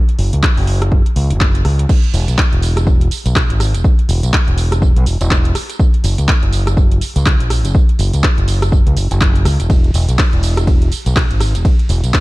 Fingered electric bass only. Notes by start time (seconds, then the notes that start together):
0.19 F#1
0.33 C#2
0.57 F#1
1.16 C#2
1.31 F#1
1.65 C#2
2.14 E1
2.28 B1
2.53 E1
3.26 B1
3.50 G#1
3.74 E1
4.09 E1
4.23 B1
4.48 E1
4.96 B1
5.06 E1
5.21 E1
6.04 F#1
6.18 C#2
6.43 F#1
7.16 C#2
7.40 A#1
7.65 F#1
7.99 F#1
8.14 C#2
8.38 F#1
8.87 C#2
8.97 F#1
9.11 F#1
9.45 C#2
9.60 E1
9.94 E1
10.09 B1
10.33 E1
11.06 B1
11.31 G#1
11.55 E1
11.89 E1
12.04 B1